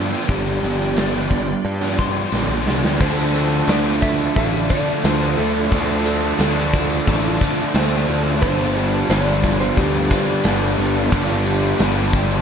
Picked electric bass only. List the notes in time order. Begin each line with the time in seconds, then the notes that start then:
Already playing: G2
0.29 G1
0.63 G1
1.65 G2
2.32 A1
2.49 A#1
2.66 C2
2.84 D2
3.01 D2
3.68 D2
4.36 A1
5.04 D2
5.38 D2
5.72 D2
6.39 D2
7.08 A1
7.74 D2
8.08 D2
8.43 G1
9.09 G1
9.77 D2
10.45 G1
10.78 G1
11.12 G1
11.80 G1